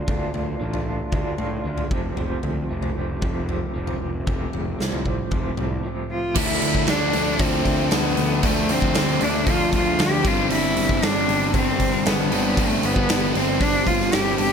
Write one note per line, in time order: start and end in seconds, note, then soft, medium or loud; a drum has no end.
0.07 0.27 D2 medium
0.07 0.58 D3 medium
0.07 0.61 A3 medium
0.07 0.61 D4 medium
0.07 0.63 F4 medium
0.07 kick medium
0.07 floor tom medium
0.34 0.53 D2 medium
0.34 floor tom medium
0.60 0.99 A1 medium
0.60 1.10 D3 medium
0.60 0.89 A3 medium
0.60 0.87 D4 medium
0.60 0.85 F4 medium
0.74 floor tom medium
0.86 1.12 A3 soft
0.86 1.12 D4 soft
0.86 1.15 F4 medium
1.12 1.32 D2 medium
1.12 1.63 D3 medium
1.12 1.41 A3 medium
1.12 1.38 D4 medium
1.12 1.37 F4 loud
1.12 kick medium
1.12 floor tom medium
1.38 1.58 A2 medium
1.38 1.65 A3 medium
1.38 1.65 D4 medium
1.38 1.67 F4 medium
1.38 floor tom medium
1.64 1.84 D2 medium
1.64 1.89 D3 medium
1.64 1.93 A3 medium
1.64 1.90 D4 medium
1.64 1.90 F4 medium
1.78 floor tom medium
1.91 2.10 F1 medium
1.91 2.16 F3 medium
1.91 2.18 A3 medium
1.91 2.19 C4 medium
1.91 2.19 G4 medium
1.91 kick medium
2.16 2.36 F1 medium
2.16 2.69 F3 medium
2.16 2.70 A3 medium
2.16 2.71 C4 medium
2.16 2.72 G4 medium
2.16 floor tom medium
2.43 2.63 D2 medium
2.43 floor tom medium
2.69 2.89 F1 medium
2.69 3.21 F3 medium
2.69 2.98 A3 medium
2.69 2.97 C4 medium
2.69 2.95 G4 medium
2.82 floor tom medium
2.95 3.15 F1 medium
2.95 3.22 A3 medium
2.95 3.23 C4 medium
2.95 3.24 G4 medium
3.21 3.61 F1 medium
3.21 3.73 F3 medium
3.21 3.51 A3 medium
3.21 3.49 C4 medium
3.21 3.47 G4 medium
3.21 kick medium
3.21 floor tom medium
3.48 3.75 A3 medium
3.48 3.75 C4 medium
3.48 3.76 G4 medium
3.48 floor tom medium
3.74 3.94 F1 medium
3.74 4.25 F3 medium
3.74 4.26 A3 medium
3.74 4.27 C4 medium
3.74 4.28 G4 medium
3.87 floor tom medium
4.02 4.21 F1 medium
4.26 4.46 F1 medium
4.26 4.78 F3 medium
4.26 4.79 A3 medium
4.26 4.80 C4 medium
4.26 4.81 G4 medium
4.26 kick medium
4.26 floor tom medium
4.53 4.73 F1 medium
4.53 floor tom medium
4.79 5.18 C2 medium
4.79 5.30 F3 medium
4.79 5.07 A3 medium
4.79 5.05 C4 medium
4.79 5.03 G4 medium
4.79 snare medium
4.92 floor tom medium
5.05 5.32 A3 soft
5.05 5.33 C4 medium
5.05 5.33 G4 medium
5.05 kick medium
5.05 mid tom medium
5.31 5.51 F1 medium
5.31 5.82 F3 medium
5.31 5.60 A3 medium
5.31 5.58 C4 loud
5.31 5.56 G4 medium
5.31 kick medium
5.31 floor tom medium
5.57 5.78 C2 medium
5.57 5.83 A3 medium
5.57 5.85 C4 medium
5.57 5.86 G4 medium
5.57 floor tom medium
5.57 mid tom medium
5.83 6.34 F3 medium
5.83 6.35 A3 medium
5.83 6.35 C4 medium
5.83 6.36 G4 medium
6.11 6.38 F4 medium
6.35 6.59 D2 loud
6.35 6.87 D3 medium
6.35 6.88 F3 medium
6.35 6.88 A3 loud
6.35 6.89 D4 medium
6.35 6.91 E4 medium
6.35 kick loud
6.35 crash loud
6.61 6.85 D2 loud
6.61 open hi-hat medium
6.75 kick medium
6.87 7.11 D2 medium
6.87 7.12 D3 medium
6.87 7.13 F3 medium
6.87 7.14 A3 medium
6.87 7.15 D4 loud
6.87 7.43 D4 medium
6.87 snare loud
6.87 open hi-hat medium
7.13 7.37 D2 medium
7.13 7.39 D3 medium
7.13 7.40 F3 loud
7.13 7.41 A3 loud
7.13 7.42 D4 medium
7.13 open hi-hat medium
7.39 7.63 D2 medium
7.39 7.91 D3 loud
7.39 7.92 F3 loud
7.39 7.92 A3 loud
7.39 7.96 C4 medium
7.39 7.94 D4 loud
7.39 kick loud
7.39 open hi-hat medium
7.65 7.89 D2 medium
7.65 kick medium
7.65 open hi-hat medium
7.91 8.15 D2 medium
7.91 8.17 D3 medium
7.91 8.18 F3 loud
7.91 8.19 A3 medium
7.91 8.47 B3 loud
7.91 8.20 D4 loud
7.91 snare loud
7.91 open hi-hat medium
8.17 8.41 D2 medium
8.17 8.42 D3 loud
8.17 8.43 F3 medium
8.17 8.43 A3 medium
8.17 8.45 D4 medium
8.17 open hi-hat medium
8.43 8.66 D2 medium
8.43 8.95 D3 medium
8.43 8.95 F3 medium
8.43 8.96 A3 medium
8.43 8.73 A3 loud
8.43 8.97 D4 loud
8.43 kick loud
8.43 open hi-hat loud
8.69 8.92 D2 loud
8.69 9.25 C4 loud
8.69 open hi-hat medium
8.82 kick medium
8.94 9.18 D2 medium
8.94 9.21 D3 loud
8.94 9.21 F3 loud
8.94 9.22 A3 loud
8.94 9.23 D4 loud
8.94 snare loud
8.94 open hi-hat medium
9.20 9.44 D2 medium
9.20 9.46 D3 medium
9.20 9.47 F3 medium
9.20 9.48 A3 loud
9.20 9.51 D4 medium
9.20 9.49 D4 medium
9.20 open hi-hat medium
9.46 9.70 D2 medium
9.46 9.97 D3 medium
9.46 9.98 F3 loud
9.46 9.99 A3 loud
9.46 10.00 D4 loud
9.46 9.74 F4 loud
9.46 kick loud
9.46 open hi-hat medium
9.73 9.96 D2 medium
9.73 10.03 F4 medium
9.73 kick medium
9.73 open hi-hat medium
9.98 10.22 D2 loud
9.98 10.23 D3 medium
9.98 10.23 F3 medium
9.98 10.24 A3 loud
9.98 10.27 D4 medium
9.98 10.29 G4 loud
9.98 snare loud
9.98 open hi-hat medium
10.25 10.48 G1 medium
10.25 10.50 G2 loud
10.25 10.50 D3 loud
10.25 10.51 G3 loud
10.25 10.52 C4 loud
10.25 10.52 D4 loud
10.25 10.51 F4 medium
10.25 kick loud
10.25 open hi-hat medium
10.50 10.74 G1 medium
10.50 11.01 G2 loud
10.50 11.01 D3 medium
10.50 11.02 G3 loud
10.50 11.03 C4 loud
10.50 11.04 D4 loud
10.50 11.06 E4 loud
10.50 open hi-hat medium
10.77 11.00 G1 loud
10.77 open hi-hat medium
10.89 kick medium
11.02 11.25 G1 medium
11.02 11.28 G2 medium
11.02 11.27 D3 medium
11.02 11.29 G3 loud
11.02 11.30 C4 loud
11.02 11.30 D4 loud
11.02 11.55 D4 loud
11.02 snare loud
11.02 open hi-hat medium
11.28 11.51 G1 medium
11.28 11.52 G2 medium
11.28 11.53 D3 loud
11.28 11.54 G3 medium
11.28 11.54 C4 medium
11.28 11.56 D4 loud
11.28 open hi-hat medium
11.53 11.77 G1 medium
11.53 12.03 G2 medium
11.53 12.04 D3 loud
11.53 12.05 G3 medium
11.53 12.06 C4 loud
11.53 12.10 C4 loud
11.53 12.07 D4 loud
11.53 kick loud
11.53 open hi-hat medium
11.80 12.03 G1 medium
11.80 kick medium
11.80 open hi-hat medium
12.05 12.29 G1 loud
12.05 12.29 G2 medium
12.05 12.30 D3 loud
12.05 12.31 G3 loud
12.05 12.61 B3 medium
12.05 12.31 C4 medium
12.05 12.32 D4 loud
12.05 snare loud
12.05 open hi-hat medium
12.30 12.55 G1 loud
12.30 12.55 G2 medium
12.30 12.55 D3 medium
12.30 12.56 G3 medium
12.30 12.57 C4 medium
12.30 12.58 D4 loud
12.30 open hi-hat medium
12.56 12.80 G1 loud
12.56 13.07 G2 medium
12.56 13.08 D3 medium
12.56 13.08 G3 loud
12.56 12.87 A3 loud
12.56 13.08 C4 loud
12.56 13.10 D4 loud
12.56 kick loud
12.56 open hi-hat medium
12.83 13.06 G1 medium
12.83 13.29 B3 loud
12.83 open hi-hat medium
12.96 kick medium
13.08 13.32 G1 medium
13.08 13.32 G2 medium
13.08 13.33 D3 medium
13.08 13.33 G3 loud
13.08 13.34 C4 loud
13.08 13.35 D4 loud
13.08 snare loud
13.08 open hi-hat medium
13.29 13.38 B3 medium
13.33 13.58 G1 medium
13.33 13.58 G2 medium
13.33 13.59 D3 loud
13.33 13.59 G3 loud
13.33 13.60 C4 medium
13.33 13.63 C4 medium
13.33 13.61 D4 medium
13.33 open hi-hat medium
13.59 13.84 G1 loud
13.59 14.11 G2 loud
13.59 14.11 D3 medium
13.59 14.12 G3 loud
13.59 14.13 C4 loud
13.59 13.89 D4 loud
13.59 14.14 D4 loud
13.59 kick loud
13.59 open hi-hat medium
13.87 14.09 G1 medium
13.87 14.15 F4 medium
13.87 kick medium
13.87 open hi-hat medium
14.01 snare soft
14.12 14.36 G1 medium
14.12 14.36 G2 medium
14.12 14.36 D3 medium
14.12 14.37 G3 medium
14.12 14.38 C4 loud
14.12 14.39 D4 loud
14.12 14.39 G4 medium
14.12 snare loud
14.12 open hi-hat medium
14.37 14.53 G1 medium
14.37 14.53 G2 medium
14.37 14.53 D3 medium
14.37 14.53 G3 medium
14.37 14.53 C4 medium
14.37 14.53 D4 loud
14.37 14.53 G4 loud
14.37 open hi-hat medium